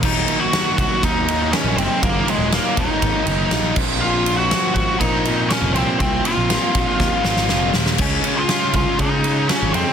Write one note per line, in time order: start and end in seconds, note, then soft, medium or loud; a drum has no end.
0.02 0.21 D#1 loud
0.02 1.53 D#2 loud
0.02 0.53 A#2 loud
0.02 0.29 D#3 loud
0.02 0.28 F#3 loud
0.02 0.28 A#3 loud
0.02 0.39 D#4 medium
0.02 0.27 D#4 loud
0.02 0.42 D#5 loud
0.02 kick loud
0.02 crash loud
0.27 0.52 D#3 medium
0.27 0.53 F#3 medium
0.27 0.54 A#3 medium
0.27 0.54 D#4 medium
0.27 ride medium
0.40 0.75 F#4 medium
0.40 0.78 F#5 loud
0.52 1.29 D#3 medium
0.52 1.28 F#3 medium
0.52 1.28 A#3 medium
0.52 1.27 D#4 medium
0.52 snare loud
0.52 ride loud
0.78 0.88 C2 medium
0.78 1.02 F#4 medium
0.78 1.02 F#5 medium
0.78 kick medium
0.78 ride medium
1.03 1.51 D#2 loud
1.03 1.50 D#4 medium
1.03 1.55 D#5 loud
1.03 kick medium
1.03 ride loud
1.28 1.53 D#3 medium
1.28 1.54 F#3 medium
1.28 1.55 A#3 medium
1.28 1.54 D#4 medium
1.28 ride medium
1.53 2.01 D#2 medium
1.53 2.02 A#2 loud
1.53 1.78 D#3 loud
1.53 1.78 F#3 loud
1.53 1.78 A#3 loud
1.53 1.76 C#4 medium
1.53 1.77 D#4 loud
1.53 1.77 C#5 medium
1.53 snare loud
1.53 ride loud
1.64 1.74 A#1 loud
1.77 1.86 F#1 medium
1.77 2.03 D#3 medium
1.77 2.03 F#3 medium
1.77 2.04 A#3 medium
1.77 2.01 C4 medium
1.77 2.04 D#4 medium
1.77 2.03 C5 medium
1.77 ride medium
2.03 2.22 F#1 medium
2.03 2.52 D#2 loud
2.03 2.53 A#2 loud
2.03 2.29 D#3 medium
2.03 2.27 F#3 loud
2.03 2.28 A#3 loud
2.03 2.27 A#3 medium
2.03 2.26 D#4 loud
2.03 2.28 A#4 loud
2.03 kick loud
2.03 ride loud
2.28 2.51 D#3 medium
2.28 2.52 F#3 medium
2.28 2.52 G#3 medium
2.28 2.53 A#3 medium
2.28 2.53 D#4 medium
2.28 2.52 G#4 medium
2.28 ride medium
2.38 2.58 D#1 medium
2.52 3.27 D#3 medium
2.52 3.27 F#3 medium
2.52 3.27 A#3 medium
2.52 2.76 A#3 medium
2.52 3.26 D#4 medium
2.52 2.79 A#4 medium
2.52 snare loud
2.52 ride loud
2.77 2.87 D#1 loud
2.77 3.74 D#4 medium
2.77 3.74 D#5 medium
2.77 kick medium
2.77 ride medium
3.02 3.12 G#1 loud
3.02 kick medium
3.02 ride loud
3.26 3.45 F#1 loud
3.26 3.51 D#3 medium
3.26 3.52 F#3 medium
3.26 3.53 A#3 medium
3.26 3.52 D#4 medium
3.26 ride medium
3.50 3.60 A#1 medium
3.50 3.75 D#2 loud
3.50 3.75 A#2 loud
3.50 3.75 D#3 loud
3.50 3.76 F#3 loud
3.50 3.78 A#3 loud
3.50 3.76 D#4 loud
3.50 snare loud
3.50 ride loud
3.63 3.73 A#1 loud
3.76 4.52 A#1 loud
3.76 4.02 A#2 medium
3.76 4.02 F3 medium
3.76 4.03 A#3 medium
3.76 4.03 C4 loud
3.76 4.04 F4 loud
3.76 kick loud
3.76 crash loud
4.00 4.56 A#2 loud
4.00 4.51 F3 medium
4.00 4.29 A#3 loud
4.00 4.28 C4 loud
4.00 4.36 F4 medium
4.00 4.27 F4 loud
4.00 4.37 F5 loud
4.26 4.52 A#3 medium
4.26 4.53 C4 medium
4.26 4.53 F4 medium
4.26 ride medium
4.37 4.73 F#4 medium
4.37 4.73 F#5 loud
4.51 5.52 F3 medium
4.51 5.28 A#3 medium
4.51 5.26 C4 medium
4.51 5.26 F4 medium
4.51 snare loud
4.51 ride loud
4.74 4.85 G#1 medium
4.74 4.99 F#4 medium
4.74 4.99 F#5 loud
4.74 kick medium
4.74 ride medium
4.99 5.48 A#2 loud
4.99 5.47 D#4 medium
4.99 5.51 D#5 loud
4.99 kick medium
4.99 ride loud
5.25 5.51 A#3 medium
5.25 5.52 C4 medium
5.25 5.53 F4 medium
5.25 ride medium
5.49 6.00 A#2 loud
5.49 6.02 F3 loud
5.49 5.77 A#3 loud
5.49 5.75 C#4 medium
5.49 5.74 C#5 medium
5.49 snare loud
5.49 ride loud
5.53 5.76 C4 loud
5.53 5.76 F4 loud
5.62 5.72 F1 loud
5.73 5.84 C2 medium
5.73 6.02 C4 medium
5.73 6.03 F4 medium
5.73 5.98 C5 medium
5.73 ride medium
5.78 6.01 A#3 medium
5.78 6.00 C4 medium
5.99 6.19 C2 medium
5.99 6.50 A#2 medium
5.99 6.50 F3 loud
5.99 6.26 A#3 loud
5.99 6.24 C4 medium
5.99 6.25 C4 loud
5.99 6.25 C5 loud
5.99 kick loud
5.99 ride loud
6.03 6.25 F4 loud
6.25 6.50 A#3 medium
6.25 6.51 C4 medium
6.25 6.53 F4 medium
6.25 7.72 F4 medium
6.25 7.22 F5 loud
6.25 ride medium
6.37 6.56 A#1 medium
6.50 7.50 F3 medium
6.50 7.26 A#3 medium
6.50 7.25 C4 medium
6.50 7.25 F4 medium
6.50 snare loud
6.50 ride loud
6.75 6.84 A#1 loud
6.75 kick loud
6.75 ride medium
7.00 7.09 D#2 loud
7.00 kick medium
7.00 snare medium
7.22 7.47 G#1 medium
7.22 7.51 F4 medium
7.22 7.70 D#5 loud
7.22 snare medium
7.26 7.50 A#3 medium
7.26 7.50 C4 medium
7.37 snare medium
7.49 7.72 F1 medium
7.49 7.98 A#2 medium
7.49 8.00 F3 medium
7.49 7.76 A#3 medium
7.49 7.74 C4 loud
7.49 7.74 F4 loud
7.49 snare medium
7.74 7.96 D#1 medium
7.74 7.99 A#3 medium
7.74 7.99 C4 medium
7.74 8.01 F4 medium
7.74 snare loud
7.86 snare loud
7.98 8.18 C#2 loud
7.98 9.49 C#3 loud
7.98 8.49 G#3 loud
7.98 8.27 C#4 loud
7.98 8.35 C#4 medium
7.98 8.26 F4 loud
7.98 8.24 G#4 medium
7.98 8.39 C#5 loud
7.98 kick loud
7.98 crash loud
8.24 8.50 C#4 medium
8.24 8.51 F4 medium
8.24 8.51 G#4 medium
8.24 ride medium
8.37 8.72 F4 medium
8.37 8.75 F5 loud
8.49 9.49 G#3 medium
8.49 9.26 C#4 medium
8.49 9.24 F4 medium
8.49 9.24 G#4 medium
8.49 snare loud
8.49 ride medium
8.73 8.83 C2 medium
8.73 8.98 F4 medium
8.73 8.98 F5 loud
8.73 kick medium
8.73 ride medium
8.99 9.47 C#3 loud
8.99 9.46 D#4 medium
8.99 9.52 D#5 loud
8.99 kick medium
8.99 ride loud
9.24 9.50 C#4 medium
9.24 9.50 F4 medium
9.24 9.50 G#4 medium
9.24 ride medium
9.49 9.93 C#3 loud
9.49 9.93 G#3 medium
9.49 9.72 C#4 medium
9.49 9.75 C#4 loud
9.49 9.73 F4 loud
9.49 9.72 G#4 loud
9.49 9.75 C#5 medium
9.49 snare loud
9.49 ride medium
9.62 9.72 G#1 loud
9.73 9.83 F2 medium
9.73 9.93 C4 medium
9.73 9.93 C#4 medium
9.73 9.93 F4 medium
9.73 9.93 G#4 medium
9.73 9.93 C5 medium
9.73 ride medium